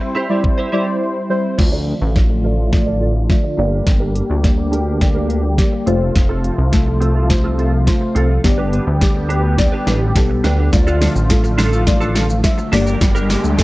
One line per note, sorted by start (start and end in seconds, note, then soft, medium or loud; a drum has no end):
0.00 0.11 G3 medium
0.00 1.55 G3 medium
0.00 1.56 C4 medium
0.00 0.11 E4 medium
0.00 1.56 E4 medium
0.00 0.11 C5 loud
0.00 1.56 C5 loud
0.00 muted clean electric guitar stroke soft
0.15 0.30 E4 medium
0.15 0.29 G4 medium
0.15 0.28 C5 medium
0.29 0.59 G3 medium
0.29 0.59 E4 medium
0.29 0.42 E4 soft
0.29 0.41 G4 medium
0.29 0.41 C5 medium
0.29 0.59 D5 loud
0.44 muted clean electric guitar stroke soft
0.44 kick loud
0.58 0.70 E4 medium
0.58 0.70 G4 medium
0.58 0.69 C5 medium
0.72 1.11 G3 loud
0.72 0.87 E4 medium
0.72 1.11 E4 medium
0.72 0.87 G4 medium
0.72 0.85 C5 loud
0.72 1.11 D5 loud
0.87 muted clean electric guitar stroke medium
1.29 1.58 G3 loud
1.29 1.58 E4 loud
1.29 1.59 C5 loud
1.58 1.94 D2 loud
1.58 5.83 D3 medium
1.58 3.56 F3 medium
1.58 1.97 A3 loud
1.58 3.56 A3 medium
1.58 3.56 F4 medium
1.58 1.97 F4 medium
1.58 muted clean electric guitar stroke soft
1.58 kick loud
1.58 snare medium
1.58 crash medium
1.72 1.85 F4 medium
1.72 1.86 A4 medium
1.72 1.87 D5 medium
1.86 1.98 F4 medium
1.86 1.98 A4 medium
1.86 1.99 D5 medium
2.01 3.30 A1 medium
2.15 2.54 A3 medium
2.15 2.54 F4 medium
2.15 2.54 D5 medium
2.15 muted clean electric guitar stroke soft
2.15 kick loud
2.15 snare medium
2.30 muted clean electric guitar stroke soft
2.44 2.58 F4 medium
2.44 2.58 A4 medium
2.44 2.57 D5 medium
2.58 2.70 F4 medium
2.58 2.70 A4 medium
2.58 2.69 D5 medium
2.72 3.11 A3 medium
2.72 3.11 F4 medium
2.72 3.11 D5 loud
2.72 kick loud
2.72 snare medium
2.86 2.99 F4 soft
2.86 2.98 A4 medium
2.86 2.98 D5 medium
3.01 3.15 F4 medium
3.01 3.15 A4 medium
3.01 3.14 D5 medium
3.15 muted clean electric guitar stroke soft
3.29 3.58 A3 medium
3.29 3.59 F4 medium
3.29 3.57 D5 loud
3.29 muted clean electric guitar stroke soft
3.29 kick loud
3.29 snare medium
3.44 muted clean electric guitar stroke soft
3.58 3.82 G1 medium
3.58 5.85 G3 medium
3.58 4.27 A#3 medium
3.58 5.85 A#3 medium
3.58 3.72 D4 medium
3.58 5.85 G4 medium
3.58 4.27 G4 medium
3.58 3.72 G4 medium
3.58 3.71 A#4 medium
3.58 4.27 D5 loud
3.72 3.84 D4 soft
3.72 3.84 G4 medium
3.72 3.83 A#4 medium
3.86 4.22 G1 loud
3.86 muted clean electric guitar stroke soft
3.86 kick loud
3.86 snare medium
3.86 closed hi-hat medium
4.00 4.13 D4 medium
4.00 4.15 G4 medium
4.00 4.15 A#4 medium
4.15 4.26 D4 medium
4.15 4.27 G4 medium
4.15 4.27 A#4 medium
4.15 closed hi-hat medium
4.29 5.59 D2 medium
4.29 muted clean electric guitar stroke medium
4.44 4.83 A#3 medium
4.44 4.83 G4 medium
4.44 4.83 D5 medium
4.44 muted clean electric guitar stroke soft
4.44 kick loud
4.44 snare medium
4.44 closed hi-hat medium
4.58 muted clean electric guitar stroke medium
4.72 4.86 D4 medium
4.72 4.86 G4 medium
4.72 4.85 A#4 medium
4.72 closed hi-hat soft
4.86 4.99 D4 medium
4.86 4.98 G4 medium
4.86 4.98 A#4 medium
5.01 5.40 A#3 medium
5.01 5.40 G4 medium
5.01 5.40 D5 loud
5.01 kick loud
5.01 snare medium
5.01 closed hi-hat medium
5.15 5.27 D4 soft
5.15 5.27 G4 medium
5.15 5.26 A#4 medium
5.29 5.43 D4 medium
5.29 5.44 G4 medium
5.29 5.42 A#4 medium
5.29 closed hi-hat soft
5.43 muted clean electric guitar stroke soft
5.58 5.87 A#3 medium
5.58 5.87 G4 medium
5.58 5.87 D5 loud
5.58 muted clean electric guitar stroke soft
5.58 kick loud
5.58 snare medium
5.58 closed hi-hat medium
5.72 muted clean electric guitar stroke soft
5.86 6.11 F1 medium
5.86 8.42 C3 medium
5.86 8.42 F3 medium
5.86 6.55 A3 medium
5.86 8.42 A3 medium
5.86 6.01 C4 medium
5.86 6.56 F4 medium
5.86 8.42 F4 medium
5.86 6.01 F4 medium
5.86 6.00 A4 medium
5.86 6.56 C5 loud
5.86 closed hi-hat medium
6.01 6.13 C4 medium
6.01 6.13 F4 medium
6.01 6.12 A4 medium
6.15 6.51 F1 loud
6.15 muted clean electric guitar stroke soft
6.15 kick loud
6.15 snare medium
6.15 closed hi-hat medium
6.29 6.42 C4 medium
6.29 6.43 F4 medium
6.29 6.44 A4 medium
6.43 6.55 C4 medium
6.43 6.55 F4 medium
6.43 6.56 A4 medium
6.43 closed hi-hat medium
6.58 7.87 C2 medium
6.58 muted clean electric guitar stroke soft
6.72 7.11 A3 medium
6.72 7.11 F4 medium
6.72 7.11 A4 medium
6.72 muted clean electric guitar stroke soft
6.72 kick loud
6.72 snare medium
6.72 closed hi-hat medium
6.87 muted clean electric guitar stroke medium
7.00 7.15 C4 medium
7.00 7.15 F4 medium
7.00 7.14 A4 medium
7.00 closed hi-hat soft
7.15 7.27 C4 medium
7.15 7.27 F4 medium
7.15 7.26 A4 medium
7.30 7.68 A3 medium
7.30 7.68 F4 medium
7.30 7.69 C5 loud
7.30 kick loud
7.30 snare medium
7.30 closed hi-hat medium
7.44 7.56 C4 soft
7.44 7.55 F4 medium
7.44 7.55 A4 medium
7.58 7.72 C4 medium
7.58 7.73 F4 medium
7.58 7.71 A4 medium
7.58 closed hi-hat soft
7.72 muted clean electric guitar stroke soft
7.87 8.25 A3 medium
7.87 8.26 F4 medium
7.87 8.26 C5 loud
7.87 muted clean electric guitar stroke soft
7.87 kick loud
7.87 snare medium
7.87 closed hi-hat medium
8.01 muted clean electric guitar stroke medium
8.15 8.39 C2 medium
8.15 8.29 C4 medium
8.15 8.29 F4 medium
8.15 8.28 A4 loud
8.15 closed hi-hat medium
8.29 8.41 C4 medium
8.29 8.41 F4 medium
8.29 8.40 A4 medium
8.44 8.79 G1 loud
8.44 12.69 D3 medium
8.44 10.70 G3 medium
8.44 10.70 B3 medium
8.44 8.83 B3 loud
8.44 10.70 G4 medium
8.44 8.83 G4 medium
8.44 8.83 D5 loud
8.44 kick loud
8.44 snare medium
8.44 closed hi-hat medium
8.58 8.71 D4 medium
8.58 8.72 G4 medium
8.58 8.72 B4 medium
8.72 8.83 D4 medium
8.72 8.84 G4 medium
8.72 8.84 B4 medium
8.72 closed hi-hat medium
8.87 9.69 D2 medium
8.87 muted clean electric guitar stroke soft
9.01 9.40 B3 medium
9.01 9.40 G4 medium
9.01 9.40 D5 medium
9.01 muted clean electric guitar stroke soft
9.01 kick loud
9.01 snare medium
9.01 closed hi-hat medium
9.15 muted clean electric guitar stroke soft
9.29 9.44 D4 medium
9.29 9.43 G4 medium
9.29 9.42 B4 medium
9.29 closed hi-hat soft
9.44 9.56 D4 soft
9.44 9.55 G4 medium
9.44 9.55 B4 medium
9.58 9.97 B3 loud
9.58 9.97 G4 medium
9.58 9.97 D5 loud
9.58 muted clean electric guitar stroke soft
9.58 kick loud
9.58 snare medium
9.58 closed hi-hat medium
9.72 9.84 D4 medium
9.72 9.84 G4 medium
9.72 9.83 B4 medium
9.87 10.13 A1 medium
9.87 10.01 D4 medium
9.87 10.01 G4 medium
9.87 10.00 B4 medium
9.87 snare medium
9.87 closed hi-hat soft
10.01 muted clean electric guitar stroke medium
10.15 10.41 B1 medium
10.15 10.54 B3 medium
10.15 10.54 G4 medium
10.15 10.54 A4 loud
10.15 muted clean electric guitar stroke soft
10.15 kick loud
10.15 snare medium
10.15 closed hi-hat medium
10.29 muted clean electric guitar stroke soft
10.44 10.70 D2 medium
10.44 10.58 D4 medium
10.44 10.58 G4 medium
10.44 10.57 B4 medium
10.44 snare medium
10.44 closed hi-hat medium
10.58 10.70 D4 medium
10.58 10.70 G4 medium
10.58 10.69 B4 medium
10.72 12.71 F3 medium
10.72 11.11 A3 loud
10.72 12.71 A3 medium
10.72 11.11 F4 medium
10.72 12.71 F4 loud
10.72 11.11 D5 loud
10.72 muted clean electric guitar stroke soft
10.72 kick loud
10.72 snare medium
10.72 closed hi-hat medium
10.72 riser medium
10.72 shaker medium
10.87 10.99 D4 medium
10.87 11.01 F4 medium
10.87 11.01 A4 medium
10.87 shaker soft
10.87 shaker medium
11.01 11.12 D4 medium
11.01 11.13 F4 medium
11.01 11.13 A4 medium
11.01 snare medium
11.01 open hi-hat medium
11.01 shaker medium
11.16 12.45 A1 medium
11.16 shaker soft
11.16 shaker medium
11.29 11.68 A3 medium
11.29 11.68 F4 medium
11.29 11.68 A4 medium
11.29 muted clean electric guitar stroke soft
11.29 kick loud
11.29 snare medium
11.29 closed hi-hat medium
11.29 shaker medium
11.44 muted clean electric guitar stroke medium
11.44 shaker medium
11.58 11.72 D4 medium
11.58 11.72 F4 loud
11.58 11.71 A4 loud
11.58 snare medium
11.58 open hi-hat medium
11.58 shaker medium
11.72 11.85 D4 medium
11.72 11.84 F4 medium
11.72 11.84 A4 medium
11.72 shaker soft
11.72 shaker medium
11.87 12.25 A3 medium
11.87 12.25 F4 medium
11.87 12.26 D5 loud
11.87 muted clean electric guitar stroke soft
11.87 kick loud
11.87 snare medium
11.87 closed hi-hat medium
11.87 shaker medium
12.01 12.14 D4 medium
12.01 12.15 F4 medium
12.01 12.15 A4 medium
12.01 shaker medium
12.15 12.26 D4 medium
12.15 12.27 F4 medium
12.15 12.27 A4 medium
12.15 snare loud
12.15 open hi-hat medium
12.15 shaker soft
12.30 shaker medium
12.44 12.73 A3 loud
12.44 12.73 F4 medium
12.44 12.73 E5 loud
12.44 muted clean electric guitar stroke soft
12.44 kick loud
12.44 snare loud
12.44 closed hi-hat medium
12.44 shaker medium
12.58 muted clean electric guitar stroke medium
12.58 shaker medium
12.72 12.96 G1 medium
12.72 13.63 D3 medium
12.72 13.63 G3 medium
12.72 13.41 A#3 medium
12.72 13.63 A#3 medium
12.72 12.86 D4 medium
12.72 13.41 G4 medium
12.72 13.63 G4 medium
12.72 12.86 G4 medium
12.72 12.85 A#4 medium
12.72 13.41 D5 loud
12.72 snare medium
12.72 open hi-hat medium
12.72 shaker medium
12.86 12.99 D4 medium
12.86 12.98 G4 medium
12.86 12.98 A#4 medium
12.86 shaker soft
12.86 shaker medium
13.01 13.36 G1 loud
13.01 kick loud
13.01 snare loud
13.01 closed hi-hat medium
13.01 shaker medium
13.15 13.28 D4 medium
13.15 13.29 G4 medium
13.15 13.29 A#4 medium
13.15 shaker soft
13.15 shaker medium
13.29 13.41 D4 medium
13.29 13.41 G4 medium
13.29 13.42 A#4 medium
13.29 snare loud
13.29 open hi-hat medium
13.29 shaker medium
13.44 13.63 D2 medium
13.44 muted clean electric guitar stroke medium
13.44 shaker medium
13.44 shaker soft
13.58 13.63 A#3 medium
13.58 13.63 G4 medium
13.58 13.63 A4 medium
13.58 muted clean electric guitar stroke soft
13.58 kick loud
13.58 snare loud
13.58 closed hi-hat medium
13.58 shaker medium